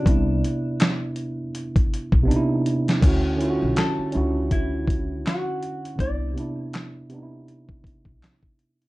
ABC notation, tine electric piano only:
X:1
M:4/4
L:1/16
Q:"Swing 16ths" 1/4=81
K:D
V:1 name="Tine electric piano"
[=C,B,DE]6- [C,B,DE] z4 z [C,B,D_E=E]4 | [D,CEF]2 [D,CE=F^F]4 [CDEF]6- [CDEF] z3 | [=C,B,DE]2 [C,B,DE]4 [C,B,D_E=E]6- [C,B,D_E=E] z3 |]